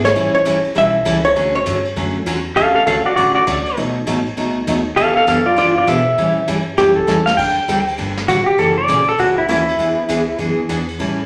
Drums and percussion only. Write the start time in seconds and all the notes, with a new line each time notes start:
0.05 snare
0.16 ride
0.46 hi-hat pedal, ride
0.64 ride
0.76 ride
1.05 hi-hat pedal, ride
1.24 ride
1.36 ride
1.66 hi-hat pedal, ride
1.85 ride
1.96 ride
2.27 hi-hat pedal, ride
2.56 ride
2.87 hi-hat pedal, ride
3.17 ride
3.47 hi-hat pedal, ride
3.66 ride
3.77 ride
4.07 hi-hat pedal, ride
4.26 ride
4.37 ride
4.67 hi-hat pedal, ride
4.97 ride
5.27 hi-hat pedal, ride
5.57 ride
5.87 hi-hat pedal, ride
6.18 ride
6.48 hi-hat pedal, ride
6.78 snare, ride
6.97 kick
7.08 snare, hi-hat pedal
7.27 snare
7.38 kick, crash
7.69 hi-hat pedal, ride
7.88 ride
7.98 ride
8.17 snare
8.29 hi-hat pedal, ride
8.59 ride
8.89 hi-hat pedal, ride
9.08 ride
9.19 ride
9.50 hi-hat pedal, ride
9.69 ride
9.80 ride
10.09 hi-hat pedal, ride
10.40 ride
10.69 hi-hat pedal, ride
10.88 ride
11.00 ride